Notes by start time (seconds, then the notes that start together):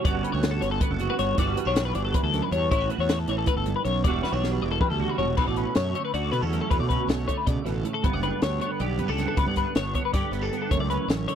0.03 G1 G2 D3 B3 C#4 F#4 D5, kick, closed hi-hat
0.23 C#4 B4, closed hi-hat
0.32 D2 C#5
0.43 snare, closed hi-hat
0.51 A4
0.60 G1 D3 C#5, snare, closed hi-hat
0.71 A4
0.81 B3 B4, kick, closed hi-hat
0.90 F#1 A4
0.99 F#4, closed hi-hat
1.10 B4
1.18 G1 G2 C#5, snare, closed hi-hat
1.37 G1 G2 E3 G3 D4 F#4 D5, kick, closed hi-hat
1.56 B3 B4, closed hi-hat
1.65 B1 D4 C#5
1.76 snare, closed hi-hat
1.85 B4
1.94 G1 E3 D5, closed hi-hat
2.05 A4
2.13 E2 B4, kick, closed hi-hat
2.23 D2 A4
2.32 F#2, snare, closed hi-hat
2.43 B4
2.51 E2 G2 C#5, closed hi-hat
2.70 A1 A2 E4 C#5, kick, closed hi-hat
2.81 F#4
2.90 B3 B4, closed hi-hat
2.98 E2 C#5
3.09 snare, closed hi-hat
3.19 A4
3.28 A1 E3 C#5, closed hi-hat
3.38 A4
3.46 A2 B4, kick, closed hi-hat
3.56 G1 A4
3.66 G2, closed hi-hat
3.76 B4
3.85 B1 F#2 C#5, closed hi-hat
4.04 E1 E2 E3 G3 D4 F#4 D5, kick, closed hi-hat
4.23 B3 B4, snare
4.32 B1 D4 C#5
4.44 snare
4.52 B4
4.61 E1 E3 D5
4.71 A4
4.81 G3 B4, kick, mid tom
4.90 D2 A4
5.00 F#4, mid tom
5.10 B4
5.18 E1 B2 C#5, floor tom
5.37 B1 B2 A3 B4, kick, crash
5.47 A1 D5
5.56 C#4 B4, closed hi-hat
5.75 F#2 C#5, snare, closed hi-hat
5.95 D3 A3 C#5, closed hi-hat
6.05 B4
6.14 D2 F#4 D5, closed hi-hat
6.32 B2 B3 B4, closed hi-hat
6.41 E2 C#4 A4
6.51 F#2 A3, closed hi-hat
6.61 A4
6.69 E2 B2 A3 B4, kick, closed hi-hat
6.80 B2 D5
6.89 C#4 B4, kick, closed hi-hat
7.07 B1 C#5, snare, closed hi-hat
7.27 D3 A3 C#5, kick, closed hi-hat
7.37 B4
7.46 B2 C#3 D5, kick, closed hi-hat
7.65 A1 B2 B4, snare, closed hi-hat
7.75 A4
7.84 A2, closed hi-hat
7.94 A4
8.03 G1 G2 B3 B4, kick, closed hi-hat
8.13 F#1 D5
8.23 D4 B4, closed hi-hat
8.42 D2 C#5, snare, closed hi-hat
8.59 D3 B3 C#5, closed hi-hat
8.71 B4
8.80 B1 G4 D5, closed hi-hat
8.98 G2 B3 B4, closed hi-hat
9.08 C#2 D4 A4
9.18 G2 B3, snare, closed hi-hat
9.28 A4
9.36 C#2 G2 B3 B4, kick, closed hi-hat
9.46 G2 D5
9.56 D4 B4, kick, closed hi-hat
9.75 G1 C#5, snare, closed hi-hat
9.94 D3 B3 C#5, kick, closed hi-hat
10.05 B4
10.13 G2 G4 D5, kick, snare, closed hi-hat
10.31 G1 B3 B4, closed hi-hat
10.42 D4 A4
10.52 G2 B3, closed hi-hat
10.62 A4
10.70 F#1 F#2 A3 C#5, kick, closed hi-hat
10.79 C#2 D5
10.90 C#4 B4, closed hi-hat
11.08 A1 C#5, snare, closed hi-hat
11.28 D3 A3 C#5, closed hi-hat